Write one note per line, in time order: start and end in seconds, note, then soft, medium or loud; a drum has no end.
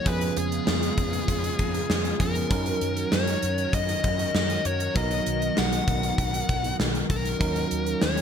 0.04 0.28 F2 medium
0.04 2.48 C#3 medium
0.04 2.15 F3 medium
0.04 2.49 G#3 medium
0.04 2.16 B3 medium
0.04 2.48 B3 medium
0.04 2.16 C#4 medium
0.04 2.48 F4 medium
0.04 2.17 G#4 medium
0.04 0.37 B4 medium
0.04 kick loud
0.04 closed hi-hat medium
0.21 closed hi-hat soft
0.37 0.59 F2 medium
0.37 2.21 G#4 medium
0.37 closed hi-hat medium
0.52 closed hi-hat soft
0.67 0.89 F2 medium
0.67 snare loud
0.83 closed hi-hat soft
0.98 1.20 F2 medium
0.98 kick medium
0.98 closed hi-hat medium
1.13 closed hi-hat soft
1.28 1.50 F2 loud
1.28 kick medium
1.28 closed hi-hat medium
1.44 closed hi-hat soft
1.59 1.81 F2 medium
1.59 kick medium
1.59 closed hi-hat medium
1.74 closed hi-hat soft
1.89 2.12 F2 medium
1.89 snare medium
2.05 closed hi-hat soft
2.19 2.42 F2 medium
2.19 2.50 F3 soft
2.19 2.51 B3 soft
2.19 2.49 C#4 soft
2.19 2.51 G#4 soft
2.19 3.15 A#4 medium
2.19 kick medium
2.19 closed hi-hat medium
2.35 closed hi-hat soft
2.49 2.73 F#2 loud
2.49 8.21 D#3 medium
2.49 4.91 F#3 medium
2.49 4.91 C#4 medium
2.49 4.94 C#4 medium
2.49 4.92 D#4 medium
2.49 7.37 F#4 medium
2.49 7.37 A#4 medium
2.49 4.92 A#4 medium
2.49 kick loud
2.49 closed hi-hat medium
2.66 closed hi-hat medium
2.81 3.04 F#2 medium
2.81 closed hi-hat medium
2.97 closed hi-hat soft
3.12 3.34 F#2 medium
3.12 3.74 C#5 medium
3.12 snare loud
3.27 closed hi-hat medium
3.42 3.65 F#2 medium
3.42 closed hi-hat medium
3.58 closed hi-hat soft
3.73 3.95 F#2 loud
3.73 4.34 D#5 medium
3.73 kick medium
3.73 closed hi-hat medium
3.89 closed hi-hat medium
4.04 4.26 F#2 medium
4.04 kick medium
4.04 closed hi-hat medium
4.19 closed hi-hat soft
4.34 4.57 F#2 loud
4.34 4.66 D#5 medium
4.34 snare medium
4.50 closed hi-hat soft
4.65 4.87 F#2 loud
4.65 4.94 C#5 medium
4.65 closed hi-hat medium
4.80 closed hi-hat soft
4.95 5.18 B1 loud
4.95 7.36 F#3 medium
4.95 7.37 B3 medium
4.95 7.38 B3 medium
4.95 7.37 D#4 medium
4.95 7.37 A#4 medium
4.95 5.59 D#5 medium
4.95 kick medium
4.95 closed hi-hat medium
5.11 closed hi-hat medium
5.26 5.49 B1 medium
5.26 closed hi-hat medium
5.42 closed hi-hat soft
5.57 5.79 B1 medium
5.57 6.76 F#5 medium
5.57 snare loud
5.73 closed hi-hat medium
5.88 6.10 B1 medium
5.88 kick medium
5.88 closed hi-hat medium
6.03 closed hi-hat soft
6.18 6.40 B1 loud
6.18 kick medium
6.18 closed hi-hat medium
6.34 closed hi-hat medium
6.49 6.71 B1 medium
6.49 kick medium
6.49 closed hi-hat medium
6.64 closed hi-hat soft
6.80 7.02 B1 medium
6.80 snare loud
6.95 closed hi-hat soft
7.10 7.32 B1 medium
7.10 8.05 A#4 medium
7.10 kick medium
7.10 closed hi-hat medium
7.25 closed hi-hat soft
7.39 7.63 D#2 medium
7.39 8.21 F#3 medium
7.39 8.21 A#3 medium
7.39 8.21 C#4 medium
7.39 8.21 D#4 medium
7.39 8.21 F#4 medium
7.39 8.21 A#4 medium
7.39 kick loud
7.39 closed hi-hat medium
7.56 closed hi-hat medium
7.71 7.93 D#2 medium
7.71 closed hi-hat medium
7.87 closed hi-hat soft
8.02 8.21 D#2 medium
8.02 8.21 C#5 medium
8.02 snare loud
8.17 closed hi-hat medium